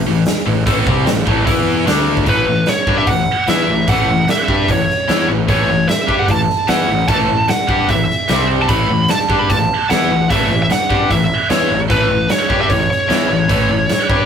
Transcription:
0.07 A1 A2 E3
0.26 snare, open hi-hat
0.46 A1 A2 E3
0.66 A1 A2 E3 A3, kick, open hi-hat
0.87 C2 C3 G3 C4, kick
1.06 A1 A2 E3, snare, open hi-hat
1.27 A1 A2 E3 A3, kick
1.45 E2 E3 B3 E4, kick, open hi-hat
1.86 D2 D3 A3 D4, snare, open hi-hat
2.07 high tom
2.17 kick
2.25 A1 A2 E3 A3, kick, open hi-hat
2.30 B4
2.46 A1 A2 E3
2.66 C#5, muted distorted electric guitar stroke, muted picked electric bass stroke, muted overdriven electric guitar stroke, snare, open hi-hat
2.87 G2 G3 D4 G4, kick
2.98 E5
3.07 A1 A2 E3 F#5, kick, open hi-hat
3.47 E2 E3 B3 E4 E5, snare, open hi-hat
3.67 A1 A2 E3
3.88 A1 A2 E3 A3 F#5, kick, open hi-hat
4.06 A1 A2 E3
4.28 E5, muted distorted electric guitar stroke, muted picked electric bass stroke, muted overdriven electric guitar stroke, snare, open hi-hat
4.48 G2 G3 D4 G4, kick
4.68 A1 A2 E3 C#5, kick, open hi-hat
4.90 snare
5.08 E2 E3 B3 E4, snare, open hi-hat
5.28 A1 A2 E3
5.48 A1 A2 E3 A3 C#5, kick, open hi-hat
5.69 A1 A2 E3
5.88 E5, muted distorted electric guitar stroke, muted overdriven electric guitar stroke, muted picked electric bass stroke, snare, open hi-hat
6.08 G2 G3 D4 G4, kick
6.19 F#5
6.28 A1 A2 E3 A5, kick, open hi-hat
6.50 snare
6.67 E2 E3 B3 E4 F#5, snare, open hi-hat
6.87 A1 A2 E3
7.08 A1 A2 E3 A3 A5, kick, open hi-hat
7.29 A1 A2 E3
7.48 F#5, muted overdriven electric guitar stroke, muted distorted electric guitar stroke, muted picked electric bass stroke, snare, open hi-hat
7.68 G2 G3 D4 G4, kick
7.89 A1 A2 E3 E5, kick, open hi-hat
8.10 snare
8.29 C2 C3 G3 C4, snare, open hi-hat
8.62 A5
8.69 A1 A2 E3 A3 B5, kick, open hi-hat
8.90 A1 A2 E3
9.08 A5, muted overdriven electric guitar stroke, muted distorted electric guitar stroke, muted picked electric bass stroke, snare, open hi-hat
9.29 G2 G3 D4 G4, kick
9.39 B5
9.49 A1 A2 E3 A5, kick, open hi-hat
9.90 E2 E3 B3 E4 F#5, snare, open hi-hat
10.11 A1 A2 E3
10.30 A1 A2 E3 A3 E5, kick, open hi-hat
10.51 A1 A2 E3
10.62 E5
10.70 F#5, muted distorted electric guitar stroke, muted overdriven electric guitar stroke, muted picked electric bass stroke, snare, open hi-hat
10.90 G2 G3 D4 G4, kick
11.10 A1 A2 E3 E5, kick, open hi-hat
11.50 E2 E3 B3 E4 C#5, snare, open hi-hat
11.70 A1 A2 E3
11.90 A1 A2 E3 A3 B4, kick, open hi-hat
12.09 A1 A2 E3
12.27 C#5, muted overdriven electric guitar stroke, muted picked electric bass stroke, muted distorted electric guitar stroke, snare, open hi-hat
12.49 G2 G3 D4 G4, kick
12.61 E5
12.68 A1 A2 E3 C#5, kick, open hi-hat
12.91 C#5, snare
13.08 E2 E3 B3 E4, snare, open hi-hat
13.28 A1 A2 E3
13.48 A1 A2 E3 A3, kick, open hi-hat
13.69 A1 A2 E3
13.89 muted picked electric bass stroke, muted distorted electric guitar stroke, muted overdriven electric guitar stroke, snare, open hi-hat
14.09 G2 G3 D4 G4, kick

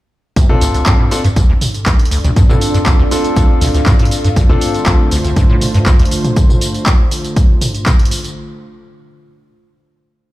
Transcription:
0.36 D2 D4, kick, closed hi-hat, tambourine
0.49 C4 D4 F4 A4, mid tom
0.61 D2, open hi-hat, tambourine
0.71 D2 D5, closed hi-hat, tambourine
0.78 A4
0.86 G2, kick, clap, closed hi-hat, tambourine
0.99 A2
1.11 C4 D4 F4 A4, open hi-hat, tambourine
1.24 G2, closed hi-hat, tambourine
1.36 C2, kick, closed hi-hat, tambourine
1.49 D2
1.61 mid tom, open hi-hat, tambourine
1.65 F5
1.74 closed hi-hat, tambourine
1.86 D2, kick, clap, closed hi-hat, tambourine
1.99 closed hi-hat
2.05 closed hi-hat
2.11 D2, open hi-hat, tambourine
2.24 D2, closed hi-hat, mid tom, tambourine
2.36 G2, kick, closed hi-hat, tambourine
2.49 A2 C4 D4 F4 A4, mid tom, tambourine
2.61 open hi-hat, tambourine
2.74 G2, closed hi-hat, tambourine
2.86 C2, kick, clap, closed hi-hat, tambourine
2.99 D2
3.11 C4 D4 F4 A4, open hi-hat, tambourine
3.24 closed hi-hat, tambourine
3.36 D2, kick, closed hi-hat, tambourine
3.61 D2, mid tom, open hi-hat, tambourine
3.74 D2, closed hi-hat, tambourine
3.86 G2, kick, clap, closed hi-hat, mid tom, tambourine
3.99 A2, closed hi-hat
4.05 closed hi-hat
4.11 open hi-hat, tambourine
4.24 G2, closed hi-hat, tambourine
4.36 C2 D3 A3 F4 C5, kick, closed hi-hat, tambourine
4.49 D2 C4 D4 F4 A4, mid tom
4.61 open hi-hat, tambourine
4.74 closed hi-hat, tambourine
4.86 D2, kick, clap, closed hi-hat, tambourine
5.11 D2, open hi-hat, tambourine
5.24 D2, closed hi-hat, tambourine
5.36 G2, kick, closed hi-hat, tambourine
5.50 A2
5.61 mid tom, open hi-hat, tambourine
5.74 G2, closed hi-hat, tambourine
5.86 C2, kick, clap, closed hi-hat, tambourine
5.99 D2, closed hi-hat
6.05 closed hi-hat
6.11 open hi-hat, tambourine
6.24 closed hi-hat, mid tom, tambourine
6.36 kick, closed hi-hat, tambourine
6.49 mid tom, tambourine
6.61 open hi-hat, tambourine
6.74 closed hi-hat, tambourine
6.86 kick, clap, closed hi-hat, tambourine
7.11 open hi-hat, tambourine
7.24 closed hi-hat, tambourine
7.36 kick, closed hi-hat, tambourine
7.61 mid tom, open hi-hat, tambourine
7.75 closed hi-hat, tambourine
7.86 kick, clap, closed hi-hat, mid tom, tambourine
7.99 closed hi-hat
8.05 closed hi-hat
8.11 open hi-hat, tambourine
8.24 closed hi-hat, tambourine

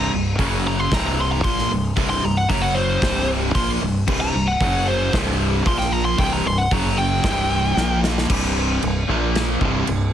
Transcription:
Already playing: C1 C2 G2 C3 A#5
0.13 C1 C2 G2
0.39 F#1 F#2 C#3 F#3, kick, open hi-hat
0.67 A#5
0.80 C6
0.92 C1 C2 G2 C3 A#5, kick, snare, open hi-hat
1.07 A#5
1.21 C6
1.32 A#5
1.43 A#1 A#2 F3 A#3 C6, kick, open hi-hat
1.58 snare
1.71 C1 C2 G2
1.96 C1 C2 G2 C3, kick, open hi-hat
2.10 C6
2.23 C1 C2 G2 A#5
2.37 F#5
2.48 F#1 F#2 C#3 F#3 A#5, kick, open hi-hat
2.62 F#5
2.75 C5
3.01 C1 C2 G2 C3, kick, snare, open hi-hat
3.54 A#1 A#2 F3 A#3 C6, kick, open hi-hat
3.81 C1 C2 G2
4.07 C1 C2 G2 C3, kick, crash
4.21 A#5
4.33 C1 C2 G2
4.47 F#5
4.61 F#1 F#2 C#3 F#3, kick, open hi-hat
4.88 C5
5.13 C1 C2 G2 C3, kick, snare, open hi-hat
5.66 A#1 A#2 F3 A#3 C6, kick, open hi-hat
5.79 G5, snare
5.92 A#5
6.05 C6
6.18 C1 C2 G2 C3 G5, kick, open hi-hat
6.33 A#5
6.45 C1 C2 G2 C6
6.58 F#5
6.71 F#1 F#2 C#3 F#3 A#5, kick, open hi-hat
6.98 G5
7.24 C1 C2 G2 C3, kick, snare, open hi-hat
7.77 A#1 A#2 F3 A#3, snare
8.04 snare
8.18 snare
8.30 C1 C2 G2 C3, kick, crash
8.82 C1 C2 G2, crash
9.08 A#1 A#2 F3 A#3
9.35 snare, crash
9.61 C1 C2 G2 C3, kick
9.87 C1 C2 G2, crash

